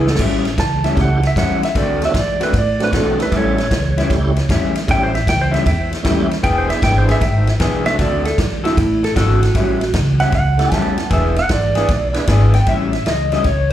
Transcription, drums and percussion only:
0.07 snare medium
0.15 kick medium
0.15 snare loud
0.15 crash loud
0.20 snare soft
0.45 snare soft
0.45 ride medium
0.58 kick medium
0.58 snare loud
0.58 ride medium
0.84 snare soft
0.84 ride medium
0.97 kick medium
0.97 snare soft
0.97 ride medium
1.23 snare soft
1.23 ride medium
1.36 kick medium
1.36 snare loud
1.36 ride medium
1.63 snare soft
1.63 ride medium
1.75 kick medium
1.75 snare soft
1.75 ride medium
2.02 snare soft
2.02 ride medium
2.14 kick medium
2.14 snare loud
2.14 ride medium
2.41 snare soft
2.41 ride medium
2.53 kick medium
2.53 snare soft
2.53 ride medium
2.80 snare soft
2.80 ride medium
2.93 kick medium
2.93 snare loud
2.93 ride medium
3.20 snare soft
3.20 ride medium
3.32 kick medium
3.32 snare soft
3.32 ride medium
3.58 snare soft
3.58 ride medium
3.71 kick medium
3.71 snare loud
3.71 ride medium
3.98 snare soft
3.98 ride medium
4.10 kick medium
4.10 snare soft
4.10 ride medium
4.36 snare soft
4.36 ride medium
4.49 kick medium
4.49 snare loud
4.49 ride medium
4.75 snare soft
4.75 ride medium
4.88 kick loud
4.88 snare soft
4.88 ride loud
5.15 snare soft
5.15 ride medium
5.27 kick medium
5.27 snare loud
5.27 ride loud
5.54 snare soft
5.54 ride medium
5.66 kick medium
5.66 snare soft
5.66 ride medium
5.93 snare soft
5.93 ride medium
6.05 kick medium
6.05 snare loud
6.05 ride medium
6.31 snare soft
6.31 ride medium
6.44 kick medium
6.44 snare soft
6.44 ride medium
6.70 snare soft
6.70 ride medium
6.82 kick medium
6.82 snare loud
6.82 ride medium
7.09 snare soft
7.09 ride medium
7.21 kick medium
7.21 snare soft
7.21 ride medium
7.47 snare soft
7.47 ride medium
7.60 kick loud
7.60 snare loud
7.60 ride medium
7.86 snare soft
7.86 ride medium
7.99 kick medium
7.99 snare soft
7.99 ride medium
8.25 snare soft
8.25 ride medium
8.38 kick loud
8.38 snare loud
8.38 ride medium
8.65 snare soft
8.65 ride medium
8.77 kick medium
8.77 snare soft
8.77 ride medium
9.04 snare soft
9.04 ride medium
9.16 kick medium
9.16 snare loud
9.16 ride loud
9.43 snare soft
9.43 ride medium
9.55 kick medium
9.55 snare soft
9.55 ride medium
9.81 snare soft
9.81 ride medium
9.94 kick loud
9.94 snare loud
9.94 ride medium
10.20 snare soft
10.20 ride medium
10.32 kick medium
10.32 snare soft
10.32 ride medium
10.59 snare soft
10.59 ride medium
10.71 kick medium
10.71 snare loud
10.71 ride medium
10.98 snare soft
10.98 ride medium
11.11 kick loud
11.11 snare soft
11.11 ride medium
11.36 snare soft
11.36 ride medium
11.49 kick medium
11.49 snare loud
11.49 ride medium
11.75 snare soft
11.75 ride medium
11.88 kick medium
11.88 snare soft
11.88 ride medium
12.14 snare soft
12.14 ride medium
12.27 kick medium
12.27 snare loud
12.27 ride loud
12.54 snare soft
12.54 ride medium
12.66 kick loud
12.66 snare soft
12.66 ride medium
12.93 snare soft
12.93 ride medium
13.06 snare loud
13.06 ride medium
13.32 snare soft
13.32 ride medium
13.44 kick loud
13.44 snare soft
13.44 ride medium

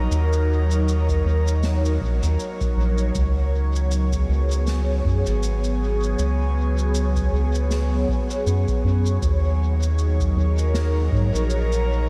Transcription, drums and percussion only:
0.12 shaker medium
0.33 shaker soft
0.71 shaker medium
0.88 shaker medium
1.09 kick medium
1.09 shaker soft
1.48 shaker medium
1.63 snare loud
1.63 shaker medium
1.85 shaker soft
2.01 kick loud
2.23 shaker medium
2.39 shaker medium
2.61 kick loud
2.61 shaker soft
2.98 shaker medium
3.15 kick loud
3.15 shaker medium
3.76 shaker medium
3.91 shaker medium
4.13 kick medium
4.13 shaker medium
4.51 shaker medium
4.67 snare medium
4.67 shaker medium
5.05 kick loud
5.26 shaker medium
5.43 shaker medium
5.64 shaker soft
6.03 shaker medium
6.19 shaker medium
6.78 shaker medium
6.95 shaker medium
7.16 kick medium
7.16 shaker soft
7.55 shaker medium
7.71 snare medium
7.71 shaker medium
8.09 kick loud
8.30 shaker medium
8.47 shaker medium
8.68 kick loud
8.68 shaker soft
9.06 shaker medium
9.22 kick loud
9.22 shaker medium
9.83 shaker medium
9.98 shaker medium
10.20 kick medium
10.20 shaker medium
10.58 shaker medium
10.74 snare medium
10.74 shaker medium
11.12 kick loud
11.35 shaker medium
11.50 shaker medium
11.72 shaker soft

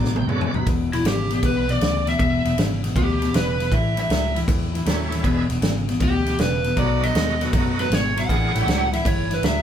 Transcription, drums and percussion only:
0.04 snare medium
0.16 high tom medium
0.29 mid tom medium
0.41 mid tom loud
0.54 floor tom medium
0.67 kick loud
0.67 snare soft
0.67 ride medium
0.93 snare soft
0.93 ride medium
1.05 snare loud
1.05 ride medium
1.30 snare soft
1.30 ride medium
1.43 kick loud
1.43 ride medium
1.69 snare soft
1.69 ride medium
1.81 snare loud
1.81 ride medium
2.07 snare soft
2.07 ride medium
2.19 kick loud
2.19 ride medium
2.45 snare soft
2.45 ride medium
2.58 snare loud
2.58 ride medium
2.84 snare soft
2.84 ride medium
2.96 kick loud
2.96 ride medium
3.22 snare soft
3.22 ride medium
3.34 snare loud
3.34 ride medium
3.60 snare soft
3.60 ride medium
3.72 kick loud
3.72 ride medium
3.97 snare soft
3.97 ride medium
4.10 snare loud
4.10 ride medium
4.36 snare soft
4.36 ride medium
4.48 kick loud
4.48 snare soft
4.48 ride loud
4.75 snare soft
4.75 ride medium
4.86 snare loud
4.86 ride medium
5.12 snare soft
5.12 ride medium
5.24 kick loud
5.24 ride medium
5.50 snare soft
5.50 ride medium
5.62 snare loud
5.62 ride medium
5.89 snare soft
5.89 ride medium
6.00 kick loud
6.00 ride medium
6.26 snare soft
6.26 ride medium
6.39 snare loud
6.39 ride medium
6.64 snare soft
6.64 ride medium
6.77 kick loud
6.77 ride medium
7.03 snare soft
7.03 ride medium
7.15 snare loud
7.15 ride medium
7.41 snare soft
7.41 ride medium
7.53 kick loud
7.53 ride loud
7.79 snare soft
7.79 ride medium
7.92 snare loud
7.92 ride medium
8.17 snare soft
8.17 ride medium
8.29 kick loud
8.29 ride medium
8.55 snare soft
8.55 ride medium
8.68 snare loud
8.68 ride medium
8.93 snare soft
8.93 ride medium
9.05 kick loud
9.05 ride loud
9.31 snare soft
9.31 ride medium
9.43 snare loud
9.43 ride medium

